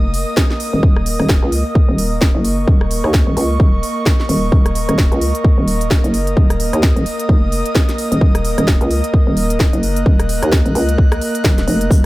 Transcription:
Already playing: F1 A#3 A#4 D#5 D#6
0.14 open hi-hat
0.37 kick, snare
0.50 snare
0.60 open hi-hat
0.73 D#1
0.83 D#1, kick
0.96 cross-stick
1.06 open hi-hat
1.19 D#1, cross-stick
1.29 kick, snare
1.43 C#2
1.52 open hi-hat
1.75 kick
1.89 D#1
1.98 open hi-hat
2.03 C#6
2.21 kick, snare
2.35 F#1
2.45 open hi-hat
2.68 D#1, kick
2.81 cross-stick
2.91 open hi-hat
3.04 D#2, cross-stick
3.14 kick, snare
3.27 D#1
3.37 C#2, open hi-hat
3.60 D#1, kick
3.83 open hi-hat
4.06 kick, snare
4.20 snare
4.29 D#1, open hi-hat
4.52 D#1, kick
4.66 cross-stick, closed hi-hat
4.75 open hi-hat
4.89 D#1, cross-stick, closed hi-hat
4.98 kick, snare
5.12 C#2, closed hi-hat
5.21 open hi-hat
5.35 closed hi-hat
5.44 kick
5.58 D#1
5.68 open hi-hat
5.72 D#6
5.81 closed hi-hat
5.91 kick, snare
6.04 F#1, closed hi-hat
6.14 open hi-hat
6.27 closed hi-hat
6.37 D#1, kick
6.50 cross-stick, closed hi-hat
6.60 open hi-hat
6.73 D#2, cross-stick, closed hi-hat
6.83 kick, snare
6.96 D#1, closed hi-hat
7.06 open hi-hat
7.19 closed hi-hat
7.29 F1, kick
7.52 open hi-hat
7.66 closed hi-hat
7.75 kick, snare
7.89 snare, closed hi-hat
7.98 open hi-hat
8.12 D#1, closed hi-hat
8.21 D#1, kick
8.35 cross-stick, closed hi-hat
8.45 open hi-hat
8.58 D#1, cross-stick, closed hi-hat
8.67 kick, snare
8.81 C#2, closed hi-hat
8.91 open hi-hat
9.04 closed hi-hat
9.14 kick
9.27 D#1
9.37 open hi-hat
9.41 F#6
9.50 closed hi-hat
9.60 kick, snare
9.73 F#1, closed hi-hat
9.83 open hi-hat
9.96 closed hi-hat
10.06 D#1, kick
10.20 cross-stick, closed hi-hat
10.29 open hi-hat
10.43 D#2, cross-stick, closed hi-hat
10.52 kick, snare
10.66 D#1, closed hi-hat
10.75 C#2, open hi-hat
10.89 closed hi-hat
10.98 kick
11.12 cross-stick, closed hi-hat
11.21 open hi-hat
11.35 closed hi-hat
11.44 D#1, kick, snare
11.58 snare, closed hi-hat
11.68 F1, open hi-hat
11.81 closed hi-hat
11.91 D#1, kick, shaker

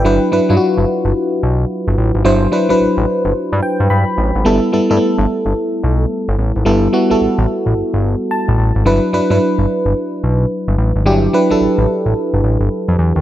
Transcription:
Already playing: G5
0.05 G1 F#3 D4 E4 B4
0.32 G2 F#3 D4 E4 B4
0.49 G2 F#3 D4 E4 F4
0.57 F#4
0.77 G1
1.05 G1
1.43 B1
1.87 G1
1.98 A1
2.15 G#1
2.24 G1 F#3 D4 E4 C5
2.52 F#3 D4 E4 B4
2.69 A1 F#3 D4 E4 B4
2.80 A1
2.97 A1
3.25 G1
3.52 G2
3.63 G5
3.80 G2
3.90 G2 B5
4.18 A1
4.35 G#1
4.45 G1 G3 B3 E4 A4
4.72 G2 G3 B3 E4 A4
4.90 G2 G3 A3 E4 A4
4.97 B3
5.18 G1
5.46 G1
5.83 B1
6.28 G1
6.38 A1
6.56 G#1
6.65 G1 G3 B3 E4 A4
6.93 G3 B3 E4 F#4
7.10 A1 G3 B3 E4 A4
7.21 A1
7.38 A1
7.66 A1
7.93 G1
8.31 A5
8.48 A1
8.58 A1
8.75 G#1
8.85 G1 F#3 D4 E4 B4
9.13 G2 F#3 D4 E4 B4
9.30 G2 F#3 D4 E4 B4
9.58 G1
9.86 G1
10.23 B1
10.68 G1
10.78 A1
10.95 G#1
11.06 G1 F#3 D4 E4 G4
11.33 F#3 D4 E4 B4
11.50 A1 F#3 D4 E4 A4
11.61 A1
11.78 A1
12.06 A1
12.33 G1
12.43 A1
12.60 G1
12.88 F2
12.99 E2
13.16 D#2

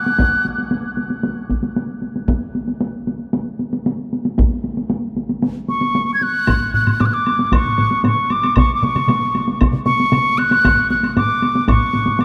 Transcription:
Already playing: F#6
0.06 taiko high
0.18 taiko, taiko high
0.45 taiko high
0.58 taiko high
0.71 taiko high
0.97 taiko high
1.10 taiko high
1.23 taiko high
1.49 taiko, taiko high
1.63 taiko high
1.76 taiko high
2.02 taiko high
2.16 taiko high
2.28 taiko, taiko high
2.55 taiko high
2.68 taiko high
2.81 taiko high
3.07 taiko high
3.33 taiko high
3.59 taiko high
3.73 taiko high
3.86 taiko high
4.13 taiko high
4.25 taiko high
4.38 taiko, taiko high
4.64 taiko high
4.77 taiko high
4.90 taiko high
5.17 taiko high
5.29 taiko high
5.42 taiko high
5.68 C#6, taiko high
5.81 taiko high
5.95 taiko high
6.14 G#6
6.21 F#6, taiko high
6.47 taiko, taiko low-mid, taiko high, high woodblock
6.74 F#6, taiko low-mid
6.87 taiko low-mid, taiko high, high woodblock
7.00 D6, taiko low-mid, taiko high, high woodblock
7.06 F#6
7.14 D6
7.26 taiko high, high woodblock
7.39 taiko high
7.52 C#6, taiko, taiko low-mid, taiko high, high woodblock
7.66 taiko low-mid
7.78 taiko low-mid, taiko high
7.91 taiko high
8.04 C#6, taiko low-mid, taiko high, high woodblock
8.30 D6, taiko high, high woodblock
8.43 taiko high, high woodblock
8.56 C#6, taiko, taiko mid, taiko high, high woodblock
8.75 D6
8.83 C#6, taiko mid, taiko high
8.96 taiko mid, taiko high, high woodblock
9.08 taiko mid, taiko high, high woodblock
9.35 taiko high, high woodblock
9.48 taiko high
9.61 taiko, taiko mid, taiko high, high woodblock
9.73 taiko mid
9.86 C#6, taiko mid, taiko high
10.00 taiko high
10.12 taiko mid, taiko high, high woodblock
10.38 F#6, taiko high, high woodblock
10.51 taiko high, high woodblock
10.65 taiko, taiko low-mid, taiko high, high woodblock
10.90 F#6, taiko high
11.03 taiko high, high woodblock
11.17 D6, taiko low-mid, taiko high, high woodblock
11.42 taiko high, high woodblock
11.55 taiko high
11.68 C#6, taiko, taiko low-mid, taiko high, high woodblock
11.93 taiko low-mid, taiko high
12.06 taiko low-mid, taiko high
12.19 D6, taiko high, high woodblock

